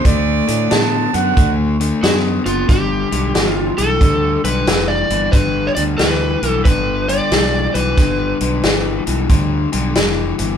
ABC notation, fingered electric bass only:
X:1
M:4/4
L:1/8
Q:"Swing" 1/4=91
K:Glyd
V:1 name="Fingered electric bass" clef=bass
D,, A,, A,, F,, D,,2 F,, F,,, | G,,, B,,, G,,, B,,, D,, B,,, =F,,, G,,, | G,,, D,, D,, B,,, G,,,2 B,,, B,,, | G,,, B,,, G,,, B,,, D,, B,,, =F,,, G,,, |]